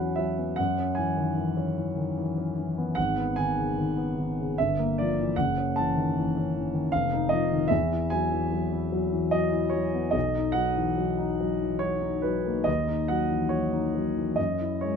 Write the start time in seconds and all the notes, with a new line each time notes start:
Already playing: E2 E3 F#3 F#5 G#5 B5
0.00 C#4
0.16 F#3 E5
0.38 B3
0.56 F#2 F#5
0.78 C#4
0.95 E3 G#5
1.17 D#3
1.37 E3
1.57 C#4
1.77 E3
1.97 D#3
2.17 E3
2.37 C#4
2.59 E3
2.78 B3
2.95 G#1 F#5
3.18 B3
3.36 D#3 G#5
3.57 C#3
3.78 D#3
3.97 B3
4.18 D#3
4.40 C#3
4.58 G1 E5
4.79 A#3
4.98 F3 D5
5.20 E3
5.36 F#1 F#5
5.58 C#4
5.76 E3 A5
5.96 D#3
6.17 E3
6.37 C#4
6.56 E3
6.74 D#3
6.92 F1 F5
7.13 D#4
7.29 F3 D#5
7.52 D#3
7.68 E2 E5
7.92 E4
8.10 F#3 G#5
8.31 E3
8.52 F#3
8.72 E4
8.92 F#3
9.13 E3
9.31 F#3 D#5
9.52 E4
9.70 F#3 C#5
9.94 B3
10.11 B1 D#5
10.35 D#4
10.52 F#3 F#5
10.76 E3
10.98 F#3
11.18 D#4
11.40 F#3
11.62 E3
11.79 F#3 C#5
12.02 D#4
12.22 F#3 B4
12.46 A#3
12.64 D#2 D#5
12.87 D#4
13.08 F#3 F#5
13.29 E3
13.49 F#3 C#5
13.73 D#4
13.95 F#3
14.16 E3
14.36 F#2 D#5
14.61 E4
14.81 G#3 C#5